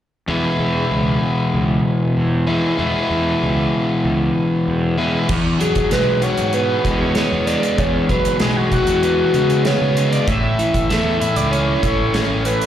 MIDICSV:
0, 0, Header, 1, 5, 480
1, 0, Start_track
1, 0, Key_signature, 4, "major"
1, 0, Tempo, 623701
1, 222, Time_signature, 4, 2, 24, 8
1, 9743, End_track
2, 0, Start_track
2, 0, Title_t, "Analog synth lead"
2, 0, Program_c, 0, 81
2, 4315, Note_on_c, 0, 68, 75
2, 4557, Note_on_c, 0, 71, 77
2, 4569, Note_off_c, 0, 68, 0
2, 4796, Note_on_c, 0, 73, 83
2, 4807, Note_off_c, 0, 71, 0
2, 5034, Note_on_c, 0, 71, 93
2, 5045, Note_off_c, 0, 73, 0
2, 5386, Note_off_c, 0, 71, 0
2, 5390, Note_on_c, 0, 73, 106
2, 5744, Note_on_c, 0, 74, 101
2, 5755, Note_off_c, 0, 73, 0
2, 5988, Note_on_c, 0, 73, 91
2, 6000, Note_off_c, 0, 74, 0
2, 6235, Note_on_c, 0, 71, 98
2, 6246, Note_off_c, 0, 73, 0
2, 6472, Note_off_c, 0, 71, 0
2, 6479, Note_on_c, 0, 68, 88
2, 6592, Note_on_c, 0, 66, 93
2, 6604, Note_off_c, 0, 68, 0
2, 6711, Note_off_c, 0, 66, 0
2, 6718, Note_on_c, 0, 66, 86
2, 7435, Note_on_c, 0, 73, 100
2, 7446, Note_off_c, 0, 66, 0
2, 7787, Note_off_c, 0, 73, 0
2, 7791, Note_on_c, 0, 74, 103
2, 7910, Note_on_c, 0, 76, 116
2, 7922, Note_off_c, 0, 74, 0
2, 8376, Note_off_c, 0, 76, 0
2, 8381, Note_on_c, 0, 76, 101
2, 8744, Note_on_c, 0, 74, 101
2, 8755, Note_off_c, 0, 76, 0
2, 8863, Note_on_c, 0, 73, 102
2, 8875, Note_off_c, 0, 74, 0
2, 9587, Note_on_c, 0, 71, 91
2, 9599, Note_off_c, 0, 73, 0
2, 9743, Note_off_c, 0, 71, 0
2, 9743, End_track
3, 0, Start_track
3, 0, Title_t, "Overdriven electric guitar"
3, 0, Program_c, 1, 29
3, 215, Note_on_c, 1, 40, 80
3, 218, Note_on_c, 1, 47, 72
3, 219, Note_on_c, 1, 52, 76
3, 223, Note_on_c, 1, 56, 76
3, 230, Note_on_c, 1, 59, 83
3, 230, Note_on_c, 1, 64, 92
3, 1893, Note_off_c, 1, 47, 0
3, 1895, Note_off_c, 1, 59, 0
3, 1898, Note_off_c, 1, 64, 0
3, 1898, Note_on_c, 1, 59, 68
3, 1901, Note_on_c, 1, 64, 85
3, 1903, Note_off_c, 1, 56, 0
3, 1905, Note_off_c, 1, 52, 0
3, 1906, Note_on_c, 1, 56, 66
3, 1908, Note_on_c, 1, 52, 70
3, 1910, Note_off_c, 1, 40, 0
3, 1912, Note_on_c, 1, 47, 62
3, 1913, Note_on_c, 1, 40, 65
3, 2127, Note_off_c, 1, 47, 0
3, 2131, Note_off_c, 1, 40, 0
3, 2134, Note_on_c, 1, 40, 74
3, 2137, Note_on_c, 1, 47, 70
3, 2140, Note_off_c, 1, 52, 0
3, 2142, Note_off_c, 1, 56, 0
3, 2143, Note_on_c, 1, 52, 89
3, 2145, Note_off_c, 1, 59, 0
3, 2145, Note_on_c, 1, 56, 82
3, 2147, Note_off_c, 1, 64, 0
3, 2148, Note_on_c, 1, 59, 87
3, 2150, Note_on_c, 1, 64, 97
3, 3811, Note_off_c, 1, 40, 0
3, 3812, Note_off_c, 1, 47, 0
3, 3815, Note_off_c, 1, 52, 0
3, 3816, Note_off_c, 1, 56, 0
3, 3818, Note_off_c, 1, 59, 0
3, 3819, Note_off_c, 1, 64, 0
3, 3830, Note_on_c, 1, 64, 76
3, 3833, Note_on_c, 1, 59, 77
3, 3838, Note_on_c, 1, 56, 75
3, 3840, Note_on_c, 1, 52, 75
3, 3844, Note_on_c, 1, 47, 56
3, 3846, Note_on_c, 1, 40, 66
3, 4057, Note_off_c, 1, 64, 0
3, 4059, Note_off_c, 1, 59, 0
3, 4060, Note_off_c, 1, 40, 0
3, 4061, Note_off_c, 1, 56, 0
3, 4063, Note_off_c, 1, 52, 0
3, 4064, Note_off_c, 1, 47, 0
3, 4069, Note_on_c, 1, 40, 62
3, 4301, Note_on_c, 1, 54, 64
3, 4547, Note_on_c, 1, 56, 64
3, 4786, Note_on_c, 1, 66, 69
3, 5032, Note_on_c, 1, 59, 69
3, 5265, Note_off_c, 1, 56, 0
3, 5271, Note_off_c, 1, 40, 0
3, 5274, Note_on_c, 1, 56, 66
3, 5503, Note_off_c, 1, 59, 0
3, 5506, Note_off_c, 1, 54, 0
3, 5512, Note_on_c, 1, 59, 68
3, 5738, Note_off_c, 1, 56, 0
3, 5747, Note_on_c, 1, 56, 69
3, 5988, Note_off_c, 1, 66, 0
3, 5990, Note_on_c, 1, 40, 70
3, 6234, Note_on_c, 1, 54, 66
3, 6464, Note_off_c, 1, 56, 0
3, 6473, Note_on_c, 1, 56, 70
3, 6710, Note_off_c, 1, 59, 0
3, 6711, Note_on_c, 1, 66, 74
3, 6953, Note_on_c, 1, 59, 65
3, 7185, Note_off_c, 1, 56, 0
3, 7188, Note_off_c, 1, 40, 0
3, 7195, Note_on_c, 1, 56, 60
3, 7420, Note_off_c, 1, 59, 0
3, 7429, Note_on_c, 1, 59, 65
3, 7430, Note_off_c, 1, 54, 0
3, 7657, Note_off_c, 1, 56, 0
3, 7666, Note_on_c, 1, 56, 63
3, 7906, Note_off_c, 1, 56, 0
3, 7907, Note_off_c, 1, 59, 0
3, 7907, Note_off_c, 1, 66, 0
3, 7909, Note_on_c, 1, 45, 72
3, 8150, Note_on_c, 1, 52, 62
3, 8390, Note_on_c, 1, 57, 67
3, 8626, Note_on_c, 1, 64, 70
3, 8860, Note_on_c, 1, 61, 77
3, 9088, Note_off_c, 1, 57, 0
3, 9097, Note_on_c, 1, 57, 65
3, 9104, Note_off_c, 1, 45, 0
3, 9335, Note_off_c, 1, 61, 0
3, 9339, Note_on_c, 1, 61, 64
3, 9572, Note_off_c, 1, 57, 0
3, 9581, Note_on_c, 1, 57, 60
3, 9743, Note_off_c, 1, 52, 0
3, 9743, Note_off_c, 1, 57, 0
3, 9743, Note_off_c, 1, 61, 0
3, 9743, Note_off_c, 1, 64, 0
3, 9743, End_track
4, 0, Start_track
4, 0, Title_t, "Fingered electric bass"
4, 0, Program_c, 2, 33
4, 219, Note_on_c, 2, 40, 83
4, 314, Note_off_c, 2, 40, 0
4, 457, Note_on_c, 2, 40, 78
4, 648, Note_off_c, 2, 40, 0
4, 700, Note_on_c, 2, 37, 73
4, 890, Note_off_c, 2, 37, 0
4, 1187, Note_on_c, 2, 37, 80
4, 1374, Note_off_c, 2, 37, 0
4, 1666, Note_on_c, 2, 40, 69
4, 2042, Note_off_c, 2, 40, 0
4, 2145, Note_on_c, 2, 40, 84
4, 2241, Note_off_c, 2, 40, 0
4, 2389, Note_on_c, 2, 40, 72
4, 2577, Note_off_c, 2, 40, 0
4, 2635, Note_on_c, 2, 37, 75
4, 2821, Note_off_c, 2, 37, 0
4, 3112, Note_on_c, 2, 37, 89
4, 3299, Note_off_c, 2, 37, 0
4, 3599, Note_on_c, 2, 40, 82
4, 3971, Note_off_c, 2, 40, 0
4, 4074, Note_on_c, 2, 40, 94
4, 4260, Note_off_c, 2, 40, 0
4, 4550, Note_on_c, 2, 35, 69
4, 4831, Note_off_c, 2, 35, 0
4, 4916, Note_on_c, 2, 44, 73
4, 5195, Note_off_c, 2, 44, 0
4, 5270, Note_on_c, 2, 40, 79
4, 5551, Note_off_c, 2, 40, 0
4, 5634, Note_on_c, 2, 40, 78
4, 5820, Note_off_c, 2, 40, 0
4, 5990, Note_on_c, 2, 40, 102
4, 6177, Note_off_c, 2, 40, 0
4, 6465, Note_on_c, 2, 35, 72
4, 6747, Note_off_c, 2, 35, 0
4, 6829, Note_on_c, 2, 40, 89
4, 7109, Note_off_c, 2, 40, 0
4, 7187, Note_on_c, 2, 49, 79
4, 7467, Note_off_c, 2, 49, 0
4, 7551, Note_on_c, 2, 49, 82
4, 7829, Note_off_c, 2, 49, 0
4, 7909, Note_on_c, 2, 33, 102
4, 8094, Note_off_c, 2, 33, 0
4, 8381, Note_on_c, 2, 40, 82
4, 8662, Note_off_c, 2, 40, 0
4, 8746, Note_on_c, 2, 37, 71
4, 9025, Note_off_c, 2, 37, 0
4, 9107, Note_on_c, 2, 33, 86
4, 9385, Note_off_c, 2, 33, 0
4, 9458, Note_on_c, 2, 33, 78
4, 9646, Note_off_c, 2, 33, 0
4, 9743, End_track
5, 0, Start_track
5, 0, Title_t, "Drums"
5, 4070, Note_on_c, 9, 49, 84
5, 4073, Note_on_c, 9, 36, 112
5, 4147, Note_off_c, 9, 49, 0
5, 4150, Note_off_c, 9, 36, 0
5, 4315, Note_on_c, 9, 42, 62
5, 4392, Note_off_c, 9, 42, 0
5, 4429, Note_on_c, 9, 42, 64
5, 4432, Note_on_c, 9, 36, 82
5, 4506, Note_off_c, 9, 42, 0
5, 4509, Note_off_c, 9, 36, 0
5, 4549, Note_on_c, 9, 42, 64
5, 4554, Note_on_c, 9, 38, 93
5, 4626, Note_off_c, 9, 42, 0
5, 4631, Note_off_c, 9, 38, 0
5, 4786, Note_on_c, 9, 42, 54
5, 4863, Note_off_c, 9, 42, 0
5, 4906, Note_on_c, 9, 42, 50
5, 4983, Note_off_c, 9, 42, 0
5, 5023, Note_on_c, 9, 42, 51
5, 5100, Note_off_c, 9, 42, 0
5, 5270, Note_on_c, 9, 36, 82
5, 5271, Note_on_c, 9, 42, 68
5, 5347, Note_off_c, 9, 36, 0
5, 5348, Note_off_c, 9, 42, 0
5, 5502, Note_on_c, 9, 42, 59
5, 5507, Note_on_c, 9, 38, 92
5, 5579, Note_off_c, 9, 42, 0
5, 5584, Note_off_c, 9, 38, 0
5, 5751, Note_on_c, 9, 42, 62
5, 5756, Note_on_c, 9, 38, 29
5, 5828, Note_off_c, 9, 42, 0
5, 5833, Note_off_c, 9, 38, 0
5, 5874, Note_on_c, 9, 42, 51
5, 5951, Note_off_c, 9, 42, 0
5, 5991, Note_on_c, 9, 36, 100
5, 5991, Note_on_c, 9, 42, 55
5, 6068, Note_off_c, 9, 36, 0
5, 6068, Note_off_c, 9, 42, 0
5, 6229, Note_on_c, 9, 36, 78
5, 6229, Note_on_c, 9, 42, 54
5, 6306, Note_off_c, 9, 36, 0
5, 6306, Note_off_c, 9, 42, 0
5, 6350, Note_on_c, 9, 42, 65
5, 6427, Note_off_c, 9, 42, 0
5, 6462, Note_on_c, 9, 42, 54
5, 6466, Note_on_c, 9, 38, 105
5, 6539, Note_off_c, 9, 42, 0
5, 6543, Note_off_c, 9, 38, 0
5, 6708, Note_on_c, 9, 36, 61
5, 6709, Note_on_c, 9, 42, 50
5, 6785, Note_off_c, 9, 36, 0
5, 6786, Note_off_c, 9, 42, 0
5, 6825, Note_on_c, 9, 42, 52
5, 6902, Note_off_c, 9, 42, 0
5, 6950, Note_on_c, 9, 42, 46
5, 7027, Note_off_c, 9, 42, 0
5, 7188, Note_on_c, 9, 42, 50
5, 7265, Note_off_c, 9, 42, 0
5, 7310, Note_on_c, 9, 42, 49
5, 7387, Note_off_c, 9, 42, 0
5, 7426, Note_on_c, 9, 42, 52
5, 7430, Note_on_c, 9, 38, 91
5, 7503, Note_off_c, 9, 42, 0
5, 7507, Note_off_c, 9, 38, 0
5, 7671, Note_on_c, 9, 42, 63
5, 7748, Note_off_c, 9, 42, 0
5, 7793, Note_on_c, 9, 42, 48
5, 7870, Note_off_c, 9, 42, 0
5, 7909, Note_on_c, 9, 36, 109
5, 7912, Note_on_c, 9, 42, 63
5, 7986, Note_off_c, 9, 36, 0
5, 7989, Note_off_c, 9, 42, 0
5, 8151, Note_on_c, 9, 42, 57
5, 8228, Note_off_c, 9, 42, 0
5, 8268, Note_on_c, 9, 36, 77
5, 8271, Note_on_c, 9, 42, 64
5, 8345, Note_off_c, 9, 36, 0
5, 8348, Note_off_c, 9, 42, 0
5, 8391, Note_on_c, 9, 42, 53
5, 8396, Note_on_c, 9, 38, 94
5, 8468, Note_off_c, 9, 42, 0
5, 8473, Note_off_c, 9, 38, 0
5, 8631, Note_on_c, 9, 42, 52
5, 8708, Note_off_c, 9, 42, 0
5, 8745, Note_on_c, 9, 42, 58
5, 8822, Note_off_c, 9, 42, 0
5, 8873, Note_on_c, 9, 42, 47
5, 8950, Note_off_c, 9, 42, 0
5, 9105, Note_on_c, 9, 36, 75
5, 9106, Note_on_c, 9, 42, 57
5, 9182, Note_off_c, 9, 36, 0
5, 9183, Note_off_c, 9, 42, 0
5, 9343, Note_on_c, 9, 42, 53
5, 9347, Note_on_c, 9, 38, 91
5, 9420, Note_off_c, 9, 42, 0
5, 9424, Note_off_c, 9, 38, 0
5, 9583, Note_on_c, 9, 42, 65
5, 9660, Note_off_c, 9, 42, 0
5, 9708, Note_on_c, 9, 42, 54
5, 9743, Note_off_c, 9, 42, 0
5, 9743, End_track
0, 0, End_of_file